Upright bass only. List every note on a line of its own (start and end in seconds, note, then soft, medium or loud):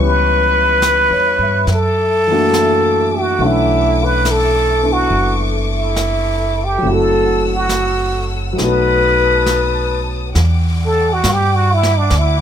0.00 1.07 C#2 medium
1.11 1.37 E2 soft
1.39 1.66 G2 medium
1.67 3.35 F#2 medium
3.39 5.06 B1 medium
5.10 6.79 F#1 medium
6.83 8.54 F#1 medium
8.58 10.32 B1 medium
10.35 11.20 E2 medium
11.24 12.08 G2 medium
12.11 12.41 D2 medium